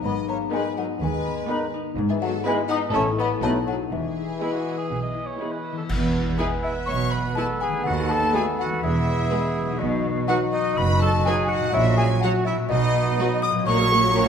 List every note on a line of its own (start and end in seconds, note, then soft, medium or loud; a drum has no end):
0.00 0.27 B3 soft
0.00 0.76 D#4 medium
0.00 0.52 B4 medium
0.00 0.27 D#5 medium
0.04 0.43 G#1 medium
0.04 1.97 G#2 medium
0.04 0.43 G#2 medium
0.04 0.15 B3 medium
0.04 0.28 B5 medium
0.28 0.39 A#3 medium
0.28 1.24 B3 soft
0.28 0.36 C#5 medium
0.28 0.52 A#5 medium
0.51 0.68 D#3 medium
0.51 0.63 G#3 medium
0.51 0.89 B3 medium
0.51 0.89 D#4 medium
0.51 0.70 D#4 medium
0.51 0.76 B4 medium
0.51 0.89 B4 medium
0.51 0.69 B4 medium
0.51 1.49 B4 medium
0.51 0.76 G#5 medium
0.51 0.63 B5 medium
0.76 0.87 F#3 medium
0.76 1.73 D#4 medium
0.76 0.84 A#4 medium
0.76 1.00 F#5 medium
1.00 1.39 D#2 medium
1.00 1.99 D#3 medium
1.00 1.72 G#3 medium
1.00 1.71 B4 loud
1.00 1.71 G#5 medium
1.25 2.22 B3 medium
1.48 1.66 D#3 medium
1.48 1.86 B3 medium
1.48 1.86 D#4 medium
1.48 1.67 D#4 medium
1.48 1.85 B4 medium
1.48 1.65 B4 medium
1.48 2.46 B4 medium
1.48 1.59 B5 medium
1.74 2.00 D#4 medium
1.96 2.35 G#1 medium
1.96 2.35 G#2 loud
1.96 2.96 G#2 medium
2.09 2.15 E3 medium
2.09 2.14 G#4 medium
2.09 2.21 E5 medium
2.20 2.33 F#3 medium
2.20 2.97 B3 medium
2.20 2.45 A4 medium
2.20 2.44 F#5 loud
2.44 2.62 G#3 medium
2.44 2.58 G#3 loud
2.44 2.82 B3 medium
2.44 2.82 E4 medium
2.44 2.63 E4 medium
2.44 2.52 B4 medium
2.44 2.81 B4 medium
2.44 2.61 B4 medium
2.44 2.96 B4 medium
2.44 2.69 G#5 loud
2.48 2.56 B5 medium
2.68 2.80 D#4 loud
2.68 3.17 E4 medium
2.68 2.76 F#5 medium
2.68 2.93 D#6 loud
2.93 3.33 A1 medium
2.93 3.32 A2 medium
2.93 3.45 A2 medium
2.93 3.10 A3 medium
2.93 3.05 C#4 medium
2.93 3.31 C#4 medium
2.93 3.31 E4 medium
2.93 3.11 E4 medium
2.93 3.30 A4 loud
2.93 3.10 C#5 medium
2.93 3.02 E5 medium
2.93 3.04 A5 medium
2.93 3.17 C#6 loud
3.18 3.29 B3 loud
3.18 3.45 E4 medium
3.18 3.94 A4 medium
3.18 3.28 D#5 medium
3.18 3.42 B5 loud
3.42 3.82 B1 medium
3.42 3.94 B2 medium
3.42 3.82 B2 loud
3.42 3.58 F#3 medium
3.42 3.54 A3 medium
3.42 3.79 B3 medium
3.42 3.79 D#4 medium
3.42 3.59 D#4 medium
3.42 3.79 F#4 medium
3.42 3.59 B4 medium
3.42 3.51 D#5 medium
3.42 3.66 A5 loud
3.42 3.53 B5 medium
3.67 3.78 F#3 medium
3.67 3.94 D#4 medium
3.67 3.94 F#4 medium
3.67 3.75 A4 medium
3.67 3.91 F#5 medium
3.91 4.31 E1 medium
3.91 4.32 E2 medium
3.91 5.61 E3 medium
3.91 5.71 E3 medium
3.91 5.62 G#4 medium
3.91 5.61 E5 medium
4.17 5.13 E4 soft
4.40 4.56 G#3 medium
4.40 4.78 B3 medium
4.40 4.78 E4 medium
4.40 4.47 E4 medium
4.40 4.59 E4 soft
4.40 4.78 G#4 medium
4.40 5.39 B4 medium
4.40 4.51 B5 medium
4.52 4.77 F#4 medium
4.66 5.63 E5 soft
4.78 5.01 G#4 medium
4.90 5.30 B1 medium
4.90 5.30 B2 medium
4.90 5.76 B3 soft
5.02 5.28 D#5 medium
5.14 5.80 E4 soft
5.26 5.53 C#5 medium
5.41 5.57 G#3 soft
5.41 5.77 B3 medium
5.41 5.77 E4 medium
5.41 5.57 E4 soft
5.41 5.78 G#4 medium
5.41 5.85 B4 soft
5.41 5.50 B5 soft
5.52 5.77 B4 medium
5.64 7.86 E5 soft
5.72 7.78 E3 medium
5.77 7.75 B3 medium
5.77 5.83 A4 medium
5.81 7.83 E4 soft
5.86 9.75 B3 medium
5.86 7.80 B4 soft
5.86 concert bass drum medium
5.86 crash medium
5.90 6.31 E1 medium
5.90 6.31 E2 medium
5.90 7.81 B4 medium
6.38 6.54 G#3 medium
6.38 6.54 B3 medium
6.38 6.46 B3 medium
6.38 6.46 E4 medium
6.38 6.49 G#4 medium
6.38 6.47 B4 medium
6.38 6.46 G#5 medium
6.38 6.62 G#5 medium
6.38 6.45 G#5 medium
6.62 6.73 E4 medium
6.62 6.87 E5 medium
6.62 6.86 E5 medium
6.62 6.70 E5 medium
6.86 7.28 B1 medium
6.86 7.29 B2 medium
6.86 7.15 C#5 loud
6.86 6.92 C#6 medium
6.86 7.10 C#6 medium
6.86 7.12 C#6 loud
7.10 7.37 B4 medium
7.10 7.35 B5 medium
7.10 7.34 B5 medium
7.10 7.19 B5 medium
7.34 7.51 G#3 medium
7.34 7.50 B3 medium
7.34 7.44 B3 medium
7.34 7.44 E4 medium
7.34 7.61 A4 medium
7.34 7.45 B4 medium
7.34 7.58 A5 loud
7.34 7.45 A5 medium
7.34 7.44 A5 medium
7.61 7.89 G#4 medium
7.61 7.83 G#5 loud
7.61 7.69 G#5 medium
7.61 7.85 G#5 medium
7.67 8.76 D#3 medium
7.72 8.78 A3 medium
7.76 8.72 B3 medium
7.81 8.77 B4 medium
7.81 8.07 F#5 loud
7.85 8.26 D#2 loud
7.85 8.26 D#2 medium
7.85 8.13 F#4 medium
7.85 8.81 A4 medium
7.85 8.09 F#5 medium
7.85 7.92 F#5 medium
8.09 8.35 A4 medium
8.09 8.32 A5 loud
8.09 8.34 A5 medium
8.33 8.41 A3 medium
8.33 8.50 A3 medium
8.33 8.50 B3 medium
8.33 8.41 F#4 medium
8.33 8.46 G#4 medium
8.33 8.42 B4 medium
8.33 8.57 G#5 loud
8.33 8.42 G#5 medium
8.33 8.44 G#5 medium
8.59 8.83 F#4 medium
8.59 8.81 F#5 loud
8.59 8.83 F#5 medium
8.59 8.68 F#5 medium
8.65 9.73 E3 medium
8.69 9.75 G#3 medium
8.74 11.71 B3 medium
8.78 9.22 E2 medium
8.78 9.73 B4 medium
8.83 9.23 E1 medium
8.83 9.78 E4 medium
8.83 9.81 G#4 medium
8.83 9.76 E5 medium
8.83 9.78 E5 medium
9.30 9.46 G#3 medium
9.30 9.39 G#3 medium
9.30 9.47 B3 medium
9.30 9.39 G#4 medium
9.30 9.38 B4 medium
9.61 11.67 B2 medium
9.65 11.59 F#3 medium
9.70 11.71 D#4 medium
9.74 11.73 B4 medium
9.79 10.20 B1 medium
9.79 10.20 B2 medium
9.79 11.75 D#4 medium
9.79 13.67 F#4 loud
10.27 10.35 F#3 medium
10.27 10.45 F#3 medium
10.27 10.36 D#4 medium
10.27 10.45 D#4 medium
10.27 10.40 F#4 medium
10.27 10.36 B4 medium
10.27 10.34 F#5 loud
10.27 10.51 F#5 loud
10.27 10.36 F#5 medium
10.51 10.79 D#4 loud
10.51 10.75 D#5 medium
10.76 11.17 F#1 medium
10.76 11.17 F#2 loud
10.76 11.01 B4 medium
10.76 10.82 B5 loud
10.76 11.00 B5 loud
11.01 11.13 A4 loud
11.01 11.25 A5 loud
11.01 11.25 A5 medium
11.01 11.24 A5 loud
11.25 11.34 F#3 medium
11.25 11.42 F#3 medium
11.25 11.34 D#4 medium
11.25 11.42 D#4 medium
11.25 11.51 G#4 loud
11.25 11.34 B4 medium
11.25 11.47 G#5 loud
11.25 11.48 G#5 loud
11.25 11.34 G#5 loud
11.48 11.73 F#4 loud
11.48 11.54 F#5 loud
11.48 11.72 F#5 loud
11.48 11.74 F#5 medium
11.56 12.63 A#2 medium
11.61 12.56 F#3 medium
11.65 12.68 C#4 medium
11.69 12.65 F#4 medium
11.73 12.14 A#1 medium
11.73 12.14 A#2 medium
11.73 12.43 C#4 medium
11.73 11.84 E4 loud
11.73 11.98 E5 loud
11.73 11.96 E5 loud
11.73 11.98 E5 loud
11.97 12.08 G#4 loud
11.97 12.20 G#5 loud
11.97 12.04 G#5 loud
11.97 12.23 G#5 loud
12.21 12.31 F#3 medium
12.21 12.39 F#3 medium
12.21 12.45 F#4 medium
12.21 12.31 F#4 medium
12.21 12.39 F#4 medium
12.21 12.31 C#5 medium
12.21 12.44 F#5 loud
12.21 12.28 F#5 medium
12.21 12.31 F#5 medium
12.45 12.57 E4 loud
12.45 12.68 E5 loud
12.45 12.52 E5 medium
12.45 12.54 E5 medium
12.52 13.60 B2 medium
12.57 13.53 F#3 medium
12.62 13.65 B3 medium
12.66 13.62 F#4 medium
12.66 13.38 D#5 loud
12.70 13.11 B1 loud
12.70 13.11 B2 medium
12.70 13.63 B3 medium
12.70 13.45 D#4 loud
12.70 13.41 D#5 loud
13.19 13.27 F#3 medium
13.19 13.36 F#3 medium
13.19 13.27 F#4 medium
13.19 13.36 F#4 medium
13.19 13.28 B4 medium
13.42 13.66 D#5 loud
13.42 13.65 D#6 loud
13.42 13.51 D#6 medium
13.42 13.67 D#6 medium
13.50 14.28 A#2 medium
13.54 14.28 F#3 medium
13.59 14.28 C#4 medium
13.63 14.28 F#4 medium
13.63 13.78 F#4 medium
13.63 13.78 A#4 medium
13.63 14.28 C#5 loud
13.63 14.28 C#6 loud
13.67 14.28 A#1 medium
13.67 14.28 A#2 loud
13.67 14.28 F#3 medium
13.67 13.79 A#3 medium
13.67 14.28 F#4 medium
13.67 14.28 C#6 loud
13.77 13.91 F#3 medium
13.77 13.91 A#4 medium
13.77 13.90 C#5 medium
13.90 14.03 A#3 medium
13.90 14.03 F#4 medium
13.90 14.03 A#4 medium
14.01 14.15 F#3 medium
14.01 14.15 A#4 medium
14.01 14.14 C#5 medium
14.14 14.26 A#3 medium
14.14 14.28 C#4 medium
14.14 14.26 F#4 medium
14.14 14.28 F#4 medium
14.14 14.26 A#4 medium